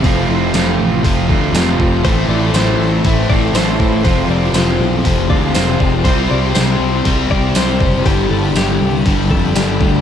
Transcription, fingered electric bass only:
\new Staff \with { instrumentName = "Fingered electric bass" } { \clef bass \time 4/4 \key f \lydian \tempo 4 = 120 f,,8 f,,8 f,,8 a,,8 f,,8 d,8 f,,8 f,,8 | a,,8 a,,8 a,,8 a,,8 a,,8 a,,8 a,,8 a,8 | f,,8 f,,8 f,,8 b,,8 f,,8 d,8 f,,8 f,,8 | c,8 c,8 c,8 c,8 c,8 c,8 c,8 fis,,8 |
g,,8 g,,8 g,,8 c,8 g,,8 f,8 g,,8 d,8 | }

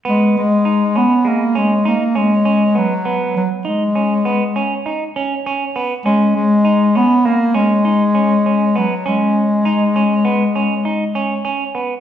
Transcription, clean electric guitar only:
\new Staff \with { instrumentName = "Clean electric guitar" } { \time 5/4 \key gis \minor \tempo 4 = 100 b4 dis'8 cis'8 gis8 cis'8 dis'8 cis'8 cis'8 b8 | b4 dis'8 cis'8 b8 cis'8 dis'8 cis'8 cis'8 b8 | cis'4 dis'8 cis'8 ais8 cis'8 dis'8 cis'8 cis'8 b8 | cis'4 dis'8 cis'8 b8 cis'8 dis'8 cis'8 cis'8 b8 | }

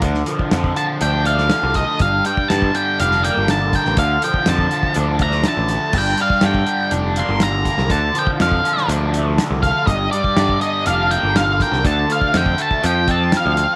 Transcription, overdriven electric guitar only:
\new Staff \with { instrumentName = "Overdriven electric guitar" } { \clef bass \time 4/4 \key g \minor \tempo 4 = 122 d8 f8 d8 f8 d'8 a8 d8 a8 | g,8 g8 d8 g8 d'8 bes8 d8 bes8 | d8 f8 d8 f8 d'8 a8 d8 a8 | g,8 g8 d8 g8 d'8 bes8 d8 bes8 |
d8 f8 d8 f8 d'8 a8 d8 a8 | g,8 g8 d8 g8 d'8 bes8 d8 bes8 | d8 a8 d8 a8 f8 c'8 f8 c'8 | }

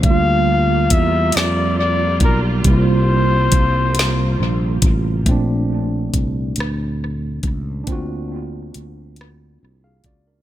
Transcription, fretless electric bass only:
\new Staff \with { instrumentName = "Fretless electric bass" } { \clef bass \time 6/8 \key bes \lydian \tempo 4. = 46 d,4 e,8 f,4 b,,8 | c,4 c,4 bes,,8 a,,8 | bes,,4 c,8 d,4 cis,8 | d,4 d,4 c,8 cis,8 | }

